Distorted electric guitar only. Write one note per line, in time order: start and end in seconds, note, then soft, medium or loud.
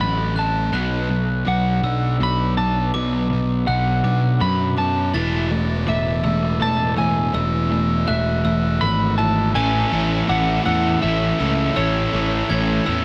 0.00 0.33 F#3 medium
0.00 0.33 A3 medium
0.36 0.70 F#3 medium
0.36 0.70 A3 medium
0.72 1.07 B2 medium
0.72 1.08 F#3 medium
0.72 1.08 B3 medium
1.10 1.43 B2 medium
1.10 1.43 F#3 medium
1.45 1.79 B2 medium
1.45 1.79 F#3 medium
1.82 2.16 B2 medium
1.82 2.16 F#3 medium
2.20 2.54 B2 medium
2.20 2.54 F#3 medium
2.58 2.91 B2 medium
2.58 2.91 F#3 medium
2.94 3.27 B2 medium
2.94 3.27 F#3 medium
3.32 3.64 B2 medium
3.32 3.65 F#3 medium
3.68 4.01 B2 medium
3.68 4.01 F#3 medium
4.04 4.37 B2 medium
4.04 4.38 F#3 medium
4.40 4.74 B2 medium
4.40 4.74 F#3 medium
4.78 5.11 B2 medium
4.78 5.11 F#3 medium
5.14 5.49 E3 medium
5.14 5.49 A3 loud
5.14 5.49 E4 loud
5.50 5.84 E3 medium
5.50 5.84 A3 medium
5.88 6.21 E3 medium
5.88 6.21 A3 medium
6.25 6.58 E3 medium
6.25 6.58 A3 medium
6.61 6.94 E3 medium
6.61 6.94 A3 medium
6.99 7.31 E3 medium
6.99 7.32 A3 medium
7.34 7.67 E3 medium
7.34 7.68 A3 medium
7.71 8.04 E3 medium
7.71 8.05 A3 medium
8.08 8.41 E3 medium
8.08 8.41 A3 medium
8.45 8.78 E3 medium
8.45 8.78 A3 medium
8.82 9.15 E3 medium
8.82 9.15 A3 medium
9.18 9.51 E3 medium
9.18 9.51 A3 medium
9.54 9.90 A2 medium
9.54 9.91 E3 loud
9.54 9.91 A3 loud
9.54 9.92 C#4 loud
9.54 9.92 E4 loud
9.91 10.27 A2 medium
9.91 10.27 E3 medium
9.91 10.28 A3 medium
9.91 10.28 C#4 medium
9.91 10.29 E4 medium
10.28 10.64 A2 loud
10.28 10.64 E3 loud
10.28 10.65 A3 loud
10.28 10.65 C#4 loud
10.28 10.65 E4 loud
10.65 11.01 A2 medium
10.65 11.01 E3 loud
10.65 11.02 A3 medium
10.65 11.02 C#4 loud
10.65 11.02 E4 medium
11.02 11.38 A2 loud
11.02 11.38 E3 medium
11.02 11.39 A3 loud
11.02 11.38 C#4 loud
11.02 11.38 E4 loud
11.39 11.75 A2 medium
11.39 11.75 E3 medium
11.39 11.76 A3 medium
11.39 11.75 C#4 medium
11.39 11.76 E4 medium
11.75 12.12 A2 loud
11.75 12.11 E3 loud
11.75 12.13 A3 loud
11.75 12.12 C#4 loud
11.75 12.12 E4 loud
12.12 12.48 A2 medium
12.12 12.48 E3 medium
12.12 12.49 A3 medium
12.12 12.48 C#4 medium
12.12 12.49 E4 medium
12.49 12.86 A2 medium
12.49 12.85 E3 loud
12.49 12.86 A3 loud
12.49 12.86 C#4 loud
12.49 12.86 E4 loud
12.86 13.05 A2 medium
12.86 13.05 E3 medium
12.86 13.05 A3 loud
12.86 13.05 C#4 loud
12.86 13.05 E4 loud